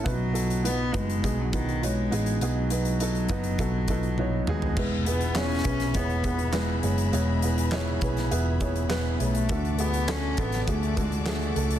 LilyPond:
<<
  \new Staff \with { instrumentName = "String section" } { \time 4/4 \key b \mixolydian \tempo 4 = 102 r1 | r1 | <gis' b' e'' b''>1~ | <gis' b' e'' b''>1 |
<d'' fis'' a'' d'''>1 | }
  \new Staff \with { instrumentName = "Upright piano" } { \time 4/4 \key b \mixolydian <b dis' fis' b'>8 <b dis' fis' a'>8 <b dis' fis' b'>8 <b dis' fis' b'>8 <b dis' fis' gis'>8 <b dis' fis' b'>8 <b dis' fis' cis''>8 <b dis' fis' gis'>8 | <b dis' fis' gis'>8 <b dis' fis' b'>8 <b dis' fis' a'>8 <b dis' fis' b'>8 <b dis' fis' a'>8 <b dis' fis' a'>8 <b dis' fis' cis''>8 <b dis' fis' gis'>8 | <b e' gis' b'>8 <b e' gis' b'>8 <b e' gis' cis''>8 <b e' gis' b'>8 <b e' gis' cis''>8 <b e' gis' b'>8 <b e' gis' b'>8 <b e' gis' cis''>8 | <b e' gis' cis''>8 <b e' gis' b'>8 <b e' gis' cis''>8 <b e' gis' b'>8 <b e' gis' b'>8 <b e' gis' cis''>8 <b e' gis' b'>8 <b e' gis' cis''>8 |
<a d' fis' a'>8 <a d' fis' gis'>8 <a d' fis' a'>8 <a d' fis' a'>8 <a d' fis' gis'>8 <a d' fis' a'>8 <a d' fis' gis'>8 <a d' fis' a'>8 | }
  \new Staff \with { instrumentName = "Upright piano" } { \clef bass \time 4/4 \key b \mixolydian b,4. r2 r8 | b,4. r2 r8 | e4. r2 r8 | e4. r2 r8 |
d4. r2 r8 | }
  \new Staff \with { instrumentName = "Cello" } { \clef bass \time 4/4 \key b \mixolydian fis4 b8 gis8. fis16 dis8 gis4 | fis2.~ fis8 gis8~ | gis8 b8 cis'4 b4 gis8 gis8~ | gis4. r2 a8~ |
a8 b8 cis'8 b8 a8 gis8 a4 | }
  \new Staff \with { instrumentName = "Picked electric bass" } { \clef bass \time 4/4 \key b \mixolydian b,,4. fis,,8 b,,4. a,,8 | b,,4. fis,,8 b,,4. dis,8 | e,,4. b,,8 e,,4. fis,,8 | e,,4. b,,8 e,,4. b,,8 |
d,4. a,,8 d,4. cis,8 | }
  \new DrumStaff \with { instrumentName = "Drums" } \drummode { \time 4/4 <hh bd>8 hh16 hh16 hh8 <hh bd>16 hh16 <hh bd>8 <hh bd>16 hh16 hh8 hh16 hh16 | hh8 hh16 hh16 hh16 hh16 <hh bd>16 hh16 <hh bd>8 <hh bd>16 hh16 tommh8 toml16 tomfh16 | <cymc bd>8 hh16 hh16 <hc sn>16 hh16 <hh bd>16 <hh sn>16 <hh bd>16 hh16 <hh bd>16 hh16 <hc sn>8 hh16 hh16 | hh8 hh16 hh16 <hc sn>8 <hh bd>16 <hh sn>16 hh8 <hh bd>16 hh16 <hc sn>8 hh16 hh16 |
<hh bd>16 hh16 hh16 hh16 <hc sn>8 <hh bd>16 <hh sn>16 <hh bd>16 hh16 <hh bd>16 hh16 <hc sn>16 hh16 hh16 hh16 | }
>>